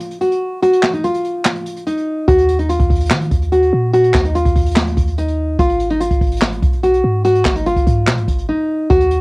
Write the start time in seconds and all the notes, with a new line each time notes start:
Already playing: F4
0.00 closed hi-hat
0.11 closed hi-hat
0.21 F#4, closed hi-hat
0.32 closed hi-hat
0.63 F#4, closed hi-hat
0.73 closed hi-hat
0.83 snare, clap
0.94 D#4, closed hi-hat
1.04 F4, closed hi-hat
1.14 closed hi-hat
1.25 closed hi-hat
1.45 snare, clap
1.56 closed hi-hat
1.66 closed hi-hat
1.76 closed hi-hat
1.87 D#4, closed hi-hat
1.97 closed hi-hat
2.28 D#2 F#4, kick, closed hi-hat
2.38 closed hi-hat
2.49 closed hi-hat
2.59 D#4, closed hi-hat
2.69 F4, closed hi-hat
2.80 D#2, kick, closed hi-hat
2.90 D#2, kick, closed hi-hat
2.95 closed hi-hat
3.00 closed hi-hat
3.06 closed hi-hat
3.10 D#3, snare, clap
3.21 closed hi-hat
3.31 D#2, kick, closed hi-hat
3.42 closed hi-hat
3.52 F#4, closed hi-hat
3.63 closed hi-hat
3.73 A#2
3.93 F#4, closed hi-hat
4.04 closed hi-hat
4.14 D#2, kick, snare, clap
4.24 D#4, closed hi-hat
4.35 F4, closed hi-hat
4.45 D#2, kick, closed hi-hat
4.56 D#2, kick, closed hi-hat, open hi-hat
4.61 closed hi-hat
4.66 closed hi-hat
4.71 closed hi-hat
4.76 snare, clap
4.87 closed hi-hat
4.97 D#2, kick, closed hi-hat
5.07 closed hi-hat
5.18 D#4, closed hi-hat
5.28 closed hi-hat
5.59 G#1 F4, kick, closed hi-hat
5.69 closed hi-hat
5.80 closed hi-hat
5.90 D#4, closed hi-hat
6.00 F4, closed hi-hat
6.11 G#1, kick, closed hi-hat
6.21 G#1, kick, closed hi-hat
6.26 closed hi-hat
6.32 closed hi-hat
6.37 closed hi-hat
6.42 snare, clap
6.52 closed hi-hat
6.62 B1, kick, closed hi-hat
6.73 closed hi-hat
6.83 F#4, closed hi-hat
6.94 closed hi-hat
7.04 G#2
7.25 F#4, closed hi-hat
7.35 closed hi-hat
7.45 G#1, kick, snare, clap
7.56 D#4, closed hi-hat
7.66 F4, closed hi-hat
7.76 G#1, kick, closed hi-hat
7.87 G#2, kick, closed hi-hat
8.07 B2, snare, clap
8.18 G#2, closed hi-hat
8.28 G#1, kick, closed hi-hat
8.38 closed hi-hat
8.49 D#4
8.90 D#2 F#4, kick, closed hi-hat
9.00 closed hi-hat
9.11 closed hi-hat